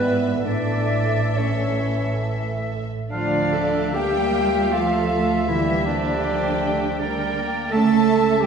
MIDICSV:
0, 0, Header, 1, 12, 480
1, 0, Start_track
1, 0, Key_signature, -1, "minor"
1, 0, Tempo, 883652
1, 257, Time_signature, 3, 2, 24, 8
1, 1220, Tempo, 853485
1, 2180, Tempo, 758534
1, 4100, Tempo, 727273
1, 5075, End_track
2, 0, Start_track
2, 0, Title_t, "Flute"
2, 0, Program_c, 0, 73
2, 0, Note_on_c, 0, 74, 57
2, 258, Note_on_c, 0, 76, 54
2, 266, Note_off_c, 0, 74, 0
2, 738, Note_off_c, 0, 76, 0
2, 741, Note_on_c, 0, 76, 50
2, 1489, Note_off_c, 0, 76, 0
2, 1712, Note_on_c, 0, 74, 66
2, 2179, Note_on_c, 0, 79, 77
2, 2189, Note_off_c, 0, 74, 0
2, 2669, Note_on_c, 0, 77, 65
2, 2679, Note_off_c, 0, 79, 0
2, 3149, Note_off_c, 0, 77, 0
2, 3153, Note_on_c, 0, 76, 72
2, 3380, Note_off_c, 0, 76, 0
2, 3384, Note_on_c, 0, 74, 70
2, 4322, Note_off_c, 0, 74, 0
2, 4575, Note_on_c, 0, 81, 88
2, 5054, Note_on_c, 0, 79, 75
2, 5064, Note_off_c, 0, 81, 0
2, 5075, Note_off_c, 0, 79, 0
2, 5075, End_track
3, 0, Start_track
3, 0, Title_t, "Violin section"
3, 0, Program_c, 1, 48
3, 15, Note_on_c, 1, 76, 54
3, 253, Note_off_c, 1, 76, 0
3, 260, Note_on_c, 1, 76, 58
3, 1563, Note_off_c, 1, 76, 0
3, 1706, Note_on_c, 1, 74, 66
3, 2156, Note_off_c, 1, 74, 0
3, 2178, Note_on_c, 1, 79, 85
3, 2674, Note_off_c, 1, 79, 0
3, 2684, Note_on_c, 1, 77, 66
3, 3156, Note_off_c, 1, 77, 0
3, 3162, Note_on_c, 1, 76, 66
3, 3393, Note_off_c, 1, 76, 0
3, 3393, Note_on_c, 1, 74, 74
3, 4346, Note_off_c, 1, 74, 0
3, 4580, Note_on_c, 1, 81, 88
3, 5031, Note_off_c, 1, 81, 0
3, 5075, End_track
4, 0, Start_track
4, 0, Title_t, "Violin section"
4, 0, Program_c, 2, 48
4, 0, Note_on_c, 2, 76, 58
4, 249, Note_off_c, 2, 76, 0
4, 255, Note_on_c, 2, 76, 57
4, 1561, Note_off_c, 2, 76, 0
4, 1712, Note_on_c, 2, 77, 63
4, 3129, Note_off_c, 2, 77, 0
4, 3153, Note_on_c, 2, 76, 57
4, 3622, Note_on_c, 2, 79, 61
4, 3625, Note_off_c, 2, 76, 0
4, 4091, Note_off_c, 2, 79, 0
4, 4099, Note_on_c, 2, 79, 66
4, 4572, Note_off_c, 2, 79, 0
4, 4578, Note_on_c, 2, 76, 64
4, 5045, Note_off_c, 2, 76, 0
4, 5053, Note_on_c, 2, 76, 68
4, 5075, Note_off_c, 2, 76, 0
4, 5075, End_track
5, 0, Start_track
5, 0, Title_t, "Oboe"
5, 0, Program_c, 3, 68
5, 0, Note_on_c, 3, 71, 66
5, 89, Note_off_c, 3, 71, 0
5, 252, Note_on_c, 3, 74, 71
5, 744, Note_on_c, 3, 73, 52
5, 752, Note_off_c, 3, 74, 0
5, 1219, Note_off_c, 3, 73, 0
5, 1710, Note_on_c, 3, 77, 73
5, 1942, Note_on_c, 3, 76, 65
5, 1951, Note_off_c, 3, 77, 0
5, 4098, Note_off_c, 3, 76, 0
5, 4102, Note_on_c, 3, 74, 70
5, 4582, Note_on_c, 3, 76, 87
5, 4591, Note_off_c, 3, 74, 0
5, 5075, Note_off_c, 3, 76, 0
5, 5075, End_track
6, 0, Start_track
6, 0, Title_t, "Clarinet"
6, 0, Program_c, 4, 71
6, 0, Note_on_c, 4, 71, 66
6, 85, Note_off_c, 4, 71, 0
6, 250, Note_on_c, 4, 74, 64
6, 741, Note_on_c, 4, 73, 51
6, 750, Note_off_c, 4, 74, 0
6, 1218, Note_off_c, 4, 73, 0
6, 1698, Note_on_c, 4, 62, 81
6, 2172, Note_on_c, 4, 67, 92
6, 2181, Note_off_c, 4, 62, 0
6, 2666, Note_on_c, 4, 65, 77
6, 2675, Note_off_c, 4, 67, 0
6, 3142, Note_off_c, 4, 65, 0
6, 3146, Note_on_c, 4, 64, 79
6, 3389, Note_on_c, 4, 62, 83
6, 3398, Note_off_c, 4, 64, 0
6, 4344, Note_off_c, 4, 62, 0
6, 4572, Note_on_c, 4, 69, 91
6, 5039, Note_on_c, 4, 67, 91
6, 5049, Note_off_c, 4, 69, 0
6, 5075, Note_off_c, 4, 67, 0
6, 5075, End_track
7, 0, Start_track
7, 0, Title_t, "French horn section"
7, 0, Program_c, 5, 60
7, 0, Note_on_c, 5, 59, 76
7, 247, Note_on_c, 5, 62, 86
7, 248, Note_off_c, 5, 59, 0
7, 730, Note_off_c, 5, 62, 0
7, 741, Note_on_c, 5, 61, 60
7, 1218, Note_off_c, 5, 61, 0
7, 1704, Note_on_c, 5, 53, 72
7, 2155, Note_off_c, 5, 53, 0
7, 2179, Note_on_c, 5, 58, 78
7, 2670, Note_on_c, 5, 57, 64
7, 2675, Note_off_c, 5, 58, 0
7, 3140, Note_off_c, 5, 57, 0
7, 3148, Note_on_c, 5, 55, 74
7, 3381, Note_off_c, 5, 55, 0
7, 3398, Note_on_c, 5, 53, 71
7, 4349, Note_off_c, 5, 53, 0
7, 4589, Note_on_c, 5, 61, 83
7, 5036, Note_off_c, 5, 61, 0
7, 5075, End_track
8, 0, Start_track
8, 0, Title_t, "Viola section"
8, 0, Program_c, 6, 48
8, 0, Note_on_c, 6, 71, 54
8, 244, Note_on_c, 6, 69, 57
8, 256, Note_off_c, 6, 71, 0
8, 1555, Note_off_c, 6, 69, 0
8, 1706, Note_on_c, 6, 65, 64
8, 1707, Note_on_c, 6, 57, 59
8, 1925, Note_off_c, 6, 65, 0
8, 1938, Note_on_c, 6, 69, 64
8, 2156, Note_off_c, 6, 57, 0
8, 2177, Note_off_c, 6, 69, 0
8, 2177, Note_on_c, 6, 67, 62
8, 2178, Note_on_c, 6, 58, 60
8, 2430, Note_off_c, 6, 67, 0
8, 2442, Note_on_c, 6, 65, 60
8, 2674, Note_off_c, 6, 58, 0
8, 2677, Note_on_c, 6, 69, 57
8, 2679, Note_on_c, 6, 57, 62
8, 2680, Note_off_c, 6, 65, 0
8, 2917, Note_off_c, 6, 57, 0
8, 2924, Note_on_c, 6, 57, 61
8, 3152, Note_off_c, 6, 57, 0
8, 3153, Note_off_c, 6, 69, 0
8, 3164, Note_on_c, 6, 58, 59
8, 3165, Note_on_c, 6, 67, 63
8, 3621, Note_off_c, 6, 58, 0
8, 3630, Note_on_c, 6, 58, 66
8, 3861, Note_off_c, 6, 58, 0
8, 3867, Note_on_c, 6, 57, 67
8, 4088, Note_off_c, 6, 67, 0
8, 4102, Note_off_c, 6, 57, 0
8, 4104, Note_on_c, 6, 55, 69
8, 4108, Note_on_c, 6, 70, 62
8, 4345, Note_off_c, 6, 55, 0
8, 4353, Note_on_c, 6, 58, 69
8, 4586, Note_off_c, 6, 70, 0
8, 4587, Note_off_c, 6, 58, 0
8, 4590, Note_on_c, 6, 69, 68
8, 4593, Note_on_c, 6, 57, 70
8, 4821, Note_off_c, 6, 57, 0
8, 4829, Note_on_c, 6, 57, 68
8, 5054, Note_off_c, 6, 69, 0
8, 5075, Note_off_c, 6, 57, 0
8, 5075, End_track
9, 0, Start_track
9, 0, Title_t, "Bassoon"
9, 0, Program_c, 7, 70
9, 0, Note_on_c, 7, 52, 58
9, 257, Note_off_c, 7, 52, 0
9, 260, Note_on_c, 7, 52, 57
9, 737, Note_off_c, 7, 52, 0
9, 742, Note_on_c, 7, 52, 60
9, 1490, Note_off_c, 7, 52, 0
9, 5075, End_track
10, 0, Start_track
10, 0, Title_t, "Cello section"
10, 0, Program_c, 8, 48
10, 0, Note_on_c, 8, 44, 59
10, 241, Note_off_c, 8, 44, 0
10, 249, Note_on_c, 8, 45, 60
10, 1557, Note_off_c, 8, 45, 0
10, 1706, Note_on_c, 8, 50, 73
10, 2156, Note_off_c, 8, 50, 0
10, 2178, Note_on_c, 8, 55, 83
10, 2674, Note_off_c, 8, 55, 0
10, 2675, Note_on_c, 8, 53, 65
10, 3150, Note_on_c, 8, 52, 74
10, 3152, Note_off_c, 8, 53, 0
10, 3384, Note_on_c, 8, 50, 68
10, 3387, Note_off_c, 8, 52, 0
10, 4341, Note_off_c, 8, 50, 0
10, 4583, Note_on_c, 8, 57, 97
10, 5033, Note_off_c, 8, 57, 0
10, 5075, End_track
11, 0, Start_track
11, 0, Title_t, "Timpani"
11, 0, Program_c, 10, 47
11, 3150, Note_on_c, 10, 50, 69
11, 3836, Note_off_c, 10, 50, 0
11, 5075, End_track
12, 0, Start_track
12, 0, Title_t, "Double bass section"
12, 0, Program_c, 11, 48
12, 0, Note_on_c, 11, 32, 59
12, 246, Note_off_c, 11, 32, 0
12, 256, Note_on_c, 11, 33, 58
12, 1561, Note_off_c, 11, 33, 0
12, 1709, Note_on_c, 11, 38, 64
12, 4557, Note_off_c, 11, 38, 0
12, 4579, Note_on_c, 11, 37, 75
12, 5075, Note_off_c, 11, 37, 0
12, 5075, End_track
0, 0, End_of_file